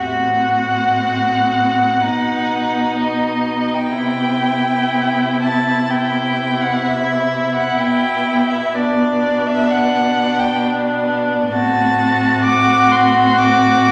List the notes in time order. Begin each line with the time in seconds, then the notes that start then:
0.01 A2 C4 F#4 F#5
2.02 B2 B3 D#4
3.00 D#5
3.74 G5
3.97 C3 E4
5.42 A5
5.90 G5
6.61 F#5
6.84 E5
7.55 F#5
7.79 B2 B3 G5
8.50 E5
8.74 D4 D5
9.46 E5
9.70 F#5
10.39 G5
11.52 A2 C4 F#4 A5
12.44 D6
12.91 C6
13.37 D6